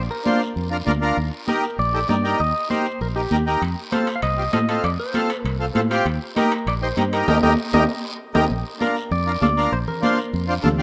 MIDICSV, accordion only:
0, 0, Header, 1, 2, 480
1, 0, Start_track
1, 0, Key_signature, -2, "major"
1, 0, Tempo, 305344
1, 1847, Time_signature, 4, 2, 24, 8
1, 17017, End_track
2, 0, Start_track
2, 0, Title_t, "Accordion"
2, 0, Program_c, 0, 21
2, 392, Note_on_c, 0, 62, 65
2, 399, Note_on_c, 0, 65, 58
2, 402, Note_on_c, 0, 72, 74
2, 651, Note_off_c, 0, 62, 0
2, 655, Note_off_c, 0, 65, 0
2, 656, Note_off_c, 0, 72, 0
2, 1109, Note_on_c, 0, 62, 72
2, 1116, Note_on_c, 0, 65, 65
2, 1122, Note_on_c, 0, 70, 69
2, 1202, Note_off_c, 0, 62, 0
2, 1205, Note_off_c, 0, 65, 0
2, 1208, Note_off_c, 0, 70, 0
2, 1351, Note_on_c, 0, 62, 76
2, 1356, Note_on_c, 0, 65, 80
2, 1363, Note_on_c, 0, 70, 86
2, 1443, Note_off_c, 0, 62, 0
2, 1445, Note_off_c, 0, 65, 0
2, 1449, Note_off_c, 0, 70, 0
2, 1593, Note_on_c, 0, 62, 67
2, 1595, Note_on_c, 0, 65, 71
2, 1606, Note_on_c, 0, 70, 77
2, 1840, Note_off_c, 0, 62, 0
2, 1841, Note_off_c, 0, 65, 0
2, 1846, Note_off_c, 0, 70, 0
2, 2321, Note_on_c, 0, 63, 70
2, 2326, Note_on_c, 0, 67, 65
2, 2334, Note_on_c, 0, 70, 73
2, 2576, Note_off_c, 0, 63, 0
2, 2578, Note_off_c, 0, 67, 0
2, 2582, Note_off_c, 0, 70, 0
2, 3046, Note_on_c, 0, 63, 58
2, 3049, Note_on_c, 0, 67, 55
2, 3053, Note_on_c, 0, 69, 72
2, 3130, Note_off_c, 0, 63, 0
2, 3132, Note_off_c, 0, 67, 0
2, 3134, Note_off_c, 0, 69, 0
2, 3281, Note_on_c, 0, 63, 63
2, 3285, Note_on_c, 0, 67, 63
2, 3295, Note_on_c, 0, 70, 69
2, 3368, Note_off_c, 0, 63, 0
2, 3370, Note_off_c, 0, 67, 0
2, 3375, Note_off_c, 0, 70, 0
2, 3521, Note_on_c, 0, 63, 55
2, 3523, Note_on_c, 0, 67, 58
2, 3532, Note_on_c, 0, 70, 75
2, 3776, Note_off_c, 0, 63, 0
2, 3777, Note_off_c, 0, 67, 0
2, 3781, Note_off_c, 0, 70, 0
2, 4239, Note_on_c, 0, 63, 64
2, 4248, Note_on_c, 0, 67, 65
2, 4251, Note_on_c, 0, 70, 72
2, 4495, Note_off_c, 0, 63, 0
2, 4499, Note_off_c, 0, 67, 0
2, 4501, Note_off_c, 0, 70, 0
2, 4965, Note_on_c, 0, 63, 57
2, 4968, Note_on_c, 0, 67, 57
2, 4975, Note_on_c, 0, 70, 59
2, 5050, Note_off_c, 0, 63, 0
2, 5051, Note_off_c, 0, 67, 0
2, 5055, Note_off_c, 0, 70, 0
2, 5206, Note_on_c, 0, 63, 63
2, 5214, Note_on_c, 0, 67, 56
2, 5218, Note_on_c, 0, 70, 76
2, 5290, Note_off_c, 0, 63, 0
2, 5294, Note_off_c, 0, 67, 0
2, 5297, Note_off_c, 0, 70, 0
2, 5449, Note_on_c, 0, 63, 62
2, 5451, Note_on_c, 0, 67, 57
2, 5458, Note_on_c, 0, 70, 69
2, 5688, Note_off_c, 0, 63, 0
2, 5689, Note_off_c, 0, 67, 0
2, 5693, Note_off_c, 0, 70, 0
2, 6163, Note_on_c, 0, 60, 58
2, 6165, Note_on_c, 0, 65, 58
2, 6176, Note_on_c, 0, 69, 68
2, 6417, Note_off_c, 0, 60, 0
2, 6418, Note_off_c, 0, 65, 0
2, 6423, Note_off_c, 0, 69, 0
2, 6875, Note_on_c, 0, 60, 62
2, 6878, Note_on_c, 0, 65, 50
2, 6888, Note_on_c, 0, 67, 61
2, 6965, Note_off_c, 0, 60, 0
2, 6967, Note_off_c, 0, 65, 0
2, 6971, Note_off_c, 0, 67, 0
2, 7121, Note_on_c, 0, 60, 73
2, 7126, Note_on_c, 0, 65, 62
2, 7128, Note_on_c, 0, 69, 75
2, 7208, Note_off_c, 0, 60, 0
2, 7210, Note_off_c, 0, 65, 0
2, 7212, Note_off_c, 0, 69, 0
2, 7366, Note_on_c, 0, 60, 64
2, 7369, Note_on_c, 0, 65, 57
2, 7377, Note_on_c, 0, 69, 69
2, 7619, Note_off_c, 0, 60, 0
2, 7620, Note_off_c, 0, 65, 0
2, 7624, Note_off_c, 0, 69, 0
2, 8078, Note_on_c, 0, 60, 70
2, 8081, Note_on_c, 0, 65, 64
2, 8091, Note_on_c, 0, 69, 80
2, 8334, Note_off_c, 0, 60, 0
2, 8336, Note_off_c, 0, 65, 0
2, 8341, Note_off_c, 0, 69, 0
2, 8799, Note_on_c, 0, 60, 67
2, 8801, Note_on_c, 0, 65, 61
2, 8807, Note_on_c, 0, 69, 73
2, 8887, Note_off_c, 0, 60, 0
2, 8888, Note_off_c, 0, 65, 0
2, 8891, Note_off_c, 0, 69, 0
2, 9030, Note_on_c, 0, 60, 90
2, 9036, Note_on_c, 0, 65, 67
2, 9040, Note_on_c, 0, 69, 86
2, 9123, Note_off_c, 0, 60, 0
2, 9125, Note_off_c, 0, 65, 0
2, 9128, Note_off_c, 0, 69, 0
2, 9275, Note_on_c, 0, 60, 73
2, 9283, Note_on_c, 0, 65, 66
2, 9291, Note_on_c, 0, 67, 82
2, 9521, Note_off_c, 0, 60, 0
2, 9526, Note_off_c, 0, 65, 0
2, 9529, Note_off_c, 0, 67, 0
2, 10001, Note_on_c, 0, 63, 67
2, 10007, Note_on_c, 0, 67, 61
2, 10012, Note_on_c, 0, 70, 74
2, 10256, Note_off_c, 0, 63, 0
2, 10259, Note_off_c, 0, 67, 0
2, 10262, Note_off_c, 0, 70, 0
2, 10722, Note_on_c, 0, 63, 55
2, 10727, Note_on_c, 0, 67, 55
2, 10731, Note_on_c, 0, 72, 66
2, 10809, Note_off_c, 0, 63, 0
2, 10812, Note_off_c, 0, 67, 0
2, 10813, Note_off_c, 0, 72, 0
2, 10966, Note_on_c, 0, 63, 64
2, 10972, Note_on_c, 0, 67, 62
2, 10974, Note_on_c, 0, 70, 76
2, 11051, Note_off_c, 0, 63, 0
2, 11054, Note_off_c, 0, 67, 0
2, 11055, Note_off_c, 0, 70, 0
2, 11202, Note_on_c, 0, 63, 59
2, 11210, Note_on_c, 0, 67, 54
2, 11213, Note_on_c, 0, 70, 72
2, 11421, Note_off_c, 0, 63, 0
2, 11423, Note_off_c, 0, 70, 0
2, 11424, Note_off_c, 0, 67, 0
2, 11444, Note_on_c, 0, 63, 91
2, 11447, Note_on_c, 0, 70, 89
2, 11448, Note_on_c, 0, 67, 82
2, 11599, Note_off_c, 0, 63, 0
2, 11601, Note_off_c, 0, 67, 0
2, 11601, Note_off_c, 0, 70, 0
2, 11679, Note_on_c, 0, 63, 87
2, 11680, Note_on_c, 0, 67, 80
2, 11680, Note_on_c, 0, 70, 91
2, 11836, Note_off_c, 0, 63, 0
2, 11837, Note_off_c, 0, 67, 0
2, 11837, Note_off_c, 0, 70, 0
2, 12166, Note_on_c, 0, 63, 89
2, 12166, Note_on_c, 0, 67, 82
2, 12169, Note_on_c, 0, 70, 84
2, 12321, Note_off_c, 0, 63, 0
2, 12321, Note_off_c, 0, 67, 0
2, 12322, Note_off_c, 0, 70, 0
2, 13117, Note_on_c, 0, 63, 90
2, 13117, Note_on_c, 0, 70, 84
2, 13118, Note_on_c, 0, 67, 89
2, 13275, Note_off_c, 0, 63, 0
2, 13275, Note_off_c, 0, 67, 0
2, 13275, Note_off_c, 0, 70, 0
2, 13824, Note_on_c, 0, 62, 64
2, 13835, Note_on_c, 0, 65, 58
2, 13835, Note_on_c, 0, 70, 67
2, 14088, Note_off_c, 0, 62, 0
2, 14093, Note_off_c, 0, 65, 0
2, 14094, Note_off_c, 0, 70, 0
2, 14560, Note_on_c, 0, 62, 63
2, 14566, Note_on_c, 0, 65, 57
2, 14575, Note_on_c, 0, 70, 65
2, 14648, Note_off_c, 0, 62, 0
2, 14651, Note_off_c, 0, 65, 0
2, 14656, Note_off_c, 0, 70, 0
2, 14794, Note_on_c, 0, 62, 72
2, 14799, Note_on_c, 0, 65, 57
2, 14803, Note_on_c, 0, 69, 73
2, 14885, Note_off_c, 0, 62, 0
2, 14887, Note_off_c, 0, 65, 0
2, 14889, Note_off_c, 0, 69, 0
2, 15044, Note_on_c, 0, 62, 60
2, 15047, Note_on_c, 0, 65, 59
2, 15050, Note_on_c, 0, 70, 76
2, 15298, Note_off_c, 0, 62, 0
2, 15300, Note_off_c, 0, 65, 0
2, 15301, Note_off_c, 0, 70, 0
2, 15747, Note_on_c, 0, 62, 73
2, 15754, Note_on_c, 0, 65, 68
2, 15763, Note_on_c, 0, 72, 84
2, 16010, Note_off_c, 0, 62, 0
2, 16013, Note_off_c, 0, 65, 0
2, 16017, Note_off_c, 0, 72, 0
2, 16473, Note_on_c, 0, 62, 72
2, 16478, Note_on_c, 0, 65, 66
2, 16483, Note_on_c, 0, 72, 76
2, 16564, Note_off_c, 0, 62, 0
2, 16567, Note_off_c, 0, 65, 0
2, 16570, Note_off_c, 0, 72, 0
2, 16703, Note_on_c, 0, 62, 83
2, 16708, Note_on_c, 0, 65, 68
2, 16716, Note_on_c, 0, 69, 87
2, 16800, Note_off_c, 0, 62, 0
2, 16802, Note_off_c, 0, 65, 0
2, 16806, Note_off_c, 0, 69, 0
2, 16947, Note_on_c, 0, 62, 76
2, 16950, Note_on_c, 0, 65, 75
2, 16960, Note_on_c, 0, 67, 81
2, 17017, Note_off_c, 0, 62, 0
2, 17017, Note_off_c, 0, 65, 0
2, 17017, Note_off_c, 0, 67, 0
2, 17017, End_track
0, 0, End_of_file